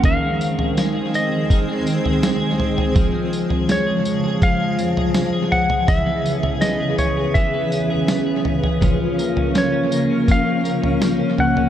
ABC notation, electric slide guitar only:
X:1
M:4/4
L:1/8
Q:1/4=82
K:Db
V:1 name="Electric slide guitar"
f3 e2 z3 | z2 d2 f3 g | =e2 _e ^c =e3 z | z2 d2 f3 g |]